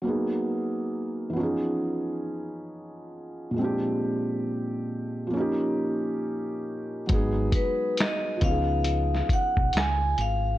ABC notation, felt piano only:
X:1
M:4/4
L:1/8
Q:"Swing 16ths" 1/4=68
K:G#dor
V:1 name="Felt piano"
[F,A,B,DG]3 [=E,^E,B,CDG]4- [=E,^E,B,CDG] | [A,,E,G,^B,=D=G]4 [E,A,C^DG]4 | [F,G,B,DG]3 [E,B,CDG]4- [E,B,CDG] |]